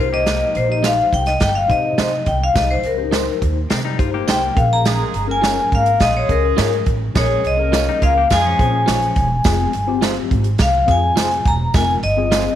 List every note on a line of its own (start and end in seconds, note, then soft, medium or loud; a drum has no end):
0.00 0.41 C2 medium
0.00 0.54 D#4 medium
0.00 0.11 F4 medium
0.00 0.55 G4 medium
0.00 0.13 C5 medium
0.00 0.55 C5 medium
0.12 0.94 A#3 medium
0.12 0.94 G4 medium
0.12 0.57 D#5 loud
0.26 snare loud
0.26 closed hi-hat medium
0.26 tambourine medium
0.55 0.98 A#1 medium
0.55 0.70 C5 medium
0.55 closed hi-hat medium
0.68 1.29 D#4 medium
0.68 1.30 G4 medium
0.68 1.30 C5 medium
0.68 0.85 D#5 medium
0.83 0.95 D#4 medium
0.83 0.96 G4 medium
0.83 0.96 C5 medium
0.83 0.98 F5 loud
0.83 snare loud
0.83 closed hi-hat loud
0.83 tambourine medium
1.13 1.34 C2 medium
1.13 1.26 G5 medium
1.13 kick medium
1.13 closed hi-hat medium
1.26 1.42 D#5 loud
1.26 snare soft
1.26 closed hi-hat medium
1.40 1.63 G1 loud
1.40 1.56 G5 medium
1.40 kick medium
1.40 snare loud
1.40 closed hi-hat medium
1.40 tambourine medium
1.55 1.69 F5 medium
1.68 1.91 C3 loud
1.68 2.21 D#4 medium
1.68 2.22 G4 medium
1.68 2.22 C5 medium
1.68 2.29 D#5 medium
1.68 kick medium
1.68 closed hi-hat medium
1.98 2.20 C3 medium
1.98 2.10 D#4 medium
1.98 2.11 G4 medium
1.98 2.11 C5 loud
1.98 snare loud
1.98 closed hi-hat loud
1.98 tambourine medium
2.26 2.49 C2 loud
2.26 2.42 G5 medium
2.26 kick medium
2.26 closed hi-hat medium
2.44 2.57 F5 loud
2.53 2.77 C2 loud
2.53 2.81 D#4 medium
2.53 2.81 G4 medium
2.53 2.82 C5 medium
2.53 2.71 D#5 medium
2.53 kick loud
2.53 snare loud
2.53 closed hi-hat medium
2.53 tambourine medium
2.71 2.85 C5 medium
2.83 3.27 C#2 medium
2.83 3.39 A#4 medium
2.83 closed hi-hat medium
2.97 3.04 C#4 medium
2.97 3.59 G4 medium
2.97 3.59 C5 medium
3.03 3.62 D#4 medium
3.11 3.25 D#4 medium
3.11 3.25 G4 medium
3.11 3.26 C5 medium
3.11 snare loud
3.11 closed hi-hat loud
3.11 tambourine medium
3.42 3.64 D#2 medium
3.42 kick medium
3.42 closed hi-hat medium
3.70 3.93 C3 loud
3.70 3.85 D#3 medium
3.70 3.84 C4 medium
3.70 snare loud
3.70 closed hi-hat medium
3.70 tambourine medium
3.85 3.99 G3 medium
3.85 3.99 D#4 medium
3.98 4.21 G1 medium
3.98 4.51 D#4 medium
3.98 4.13 F4 medium
3.98 4.51 G4 medium
3.98 4.51 C5 medium
3.98 kick medium
3.98 closed hi-hat medium
4.14 4.55 A#3 medium
4.14 4.55 G4 medium
4.28 4.50 C2 medium
4.28 4.40 D#4 medium
4.28 4.41 G4 medium
4.28 4.41 C5 medium
4.28 4.58 G5 loud
4.28 snare loud
4.28 closed hi-hat loud
4.28 tambourine medium
4.55 5.00 A#1 loud
4.55 5.14 C#4 medium
4.55 5.14 G#4 medium
4.55 5.14 A#4 medium
4.55 4.72 F5 medium
4.55 kick loud
4.55 closed hi-hat medium
4.73 5.31 A#5 loud
4.84 5.25 G#3 loud
4.84 5.25 G#4 loud
4.84 snare loud
4.84 closed hi-hat medium
4.84 tambourine medium
5.14 5.57 G1 medium
5.14 closed hi-hat medium
5.27 5.69 A#3 medium
5.27 5.89 C#4 medium
5.27 5.89 G#4 medium
5.27 5.69 A#4 medium
5.27 5.89 A#4 medium
5.31 5.74 G#5 loud
5.42 5.55 F4 medium
5.42 5.55 G#4 medium
5.42 5.56 C#5 medium
5.42 snare loud
5.42 closed hi-hat loud
5.42 tambourine medium
5.72 5.94 G#1 medium
5.72 5.95 A#3 medium
5.72 5.95 A#4 loud
5.72 6.03 F5 medium
5.72 kick medium
5.72 closed hi-hat medium
5.86 closed hi-hat medium
5.99 6.22 A#1 loud
5.99 6.82 G#3 loud
5.99 6.82 G#4 loud
5.99 6.16 D#5 medium
5.99 kick medium
5.99 snare loud
5.99 closed hi-hat medium
5.99 tambourine medium
6.17 6.23 C#5 medium
6.28 6.51 C#2 loud
6.28 6.81 C#4 medium
6.28 6.81 G#4 medium
6.28 6.82 A#4 medium
6.28 6.84 A#4 medium
6.28 kick medium
6.28 closed hi-hat medium
6.57 6.80 G#2 medium
6.57 6.70 F4 medium
6.57 6.70 G#4 medium
6.57 6.70 C#5 medium
6.57 snare loud
6.57 closed hi-hat loud
6.57 tambourine medium
6.72 closed hi-hat soft
6.86 7.08 A1 loud
6.86 kick medium
6.86 closed hi-hat medium
7.14 7.37 A#1 loud
7.14 7.56 G#3 loud
7.14 7.41 C#4 medium
7.14 7.41 G#4 medium
7.14 7.56 G#4 loud
7.14 7.42 A#4 medium
7.14 7.46 C#5 medium
7.14 kick loud
7.14 snare loud
7.14 closed hi-hat medium
7.14 tambourine medium
7.44 7.87 C2 medium
7.44 7.99 D#5 medium
7.44 closed hi-hat medium
7.57 7.99 A#3 medium
7.57 8.19 C#4 medium
7.57 8.19 G#4 medium
7.57 7.99 A#4 medium
7.57 8.20 A#4 medium
7.72 7.85 F4 medium
7.72 7.85 G#4 medium
7.72 7.86 C#5 medium
7.72 snare loud
7.72 closed hi-hat medium
7.72 tambourine medium
7.89 8.02 G3 medium
7.89 8.02 D#4 medium
8.02 8.23 C#2 medium
8.02 8.16 G#3 medium
8.02 8.25 A#3 medium
8.02 8.16 F4 medium
8.02 8.25 A#4 medium
8.02 8.32 F5 medium
8.02 kick medium
8.02 closed hi-hat medium
8.18 8.31 A#3 medium
8.18 8.30 G4 medium
8.30 8.52 F2 loud
8.30 8.85 G#3 medium
8.30 8.45 G#3 medium
8.30 8.45 F4 medium
8.30 8.85 G#4 loud
8.30 8.60 G#5 loud
8.30 kick medium
8.30 snare loud
8.30 closed hi-hat medium
8.30 tambourine medium
8.46 9.28 F3 medium
8.46 9.27 C#4 medium
8.59 8.81 A#2 loud
8.59 8.66 C4 medium
8.59 9.11 G#4 medium
8.59 9.12 C5 medium
8.59 10.00 G#5 medium
8.59 kick medium
8.59 closed hi-hat medium
8.66 9.14 C#4 medium
8.86 9.09 A#1 medium
8.86 8.99 F4 medium
8.86 9.00 G#4 medium
8.86 9.00 C#5 medium
8.86 snare loud
8.86 closed hi-hat loud
8.86 tambourine medium
9.02 closed hi-hat soft
9.16 9.38 E1 medium
9.16 kick medium
9.16 closed hi-hat medium
9.44 9.67 F1 loud
9.44 9.71 C4 medium
9.44 9.71 F4 medium
9.44 9.72 G#4 medium
9.44 kick loud
9.44 snare loud
9.44 closed hi-hat medium
9.44 tambourine medium
9.73 10.17 G1 medium
9.73 closed hi-hat medium
9.87 10.48 C4 medium
9.87 10.49 F4 medium
9.87 10.49 G4 loud
10.01 10.14 F4 medium
10.01 10.14 G#4 loud
10.01 10.15 C5 medium
10.01 snare loud
10.01 closed hi-hat loud
10.01 tambourine loud
10.31 10.53 G#1 loud
10.31 kick medium
10.31 closed hi-hat medium
10.44 closed hi-hat medium
10.58 10.81 C2 loud
10.58 10.90 F5 medium
10.58 kick medium
10.58 snare loud
10.58 closed hi-hat medium
10.58 tambourine medium
10.86 11.10 F2 loud
10.86 11.39 C4 medium
10.86 11.40 F4 medium
10.86 11.40 G#4 medium
10.86 kick medium
10.86 closed hi-hat medium
10.91 11.49 G#5 loud
11.16 11.39 F1 medium
11.16 11.29 F4 medium
11.16 11.29 G#4 medium
11.16 11.30 C5 loud
11.16 snare loud
11.16 closed hi-hat loud
11.16 tambourine medium
11.31 closed hi-hat medium
11.45 11.67 E1 loud
11.45 11.76 A#5 loud
11.45 kick loud
11.45 closed hi-hat medium
11.74 11.96 F1 loud
11.74 12.01 C4 medium
11.74 12.01 F4 medium
11.74 12.01 A#4 medium
11.74 11.88 G#5 loud
11.74 kick loud
11.74 snare loud
11.74 closed hi-hat medium
11.74 tambourine medium
12.03 12.46 G1 medium
12.03 12.55 D#5 medium
12.03 closed hi-hat medium
12.17 12.55 C4 medium
12.17 12.55 F4 medium
12.17 12.55 G#4 medium
12.31 12.44 F4 medium
12.31 12.44 G#4 medium
12.31 12.45 C5 medium
12.31 snare loud
12.31 closed hi-hat loud
12.31 tambourine medium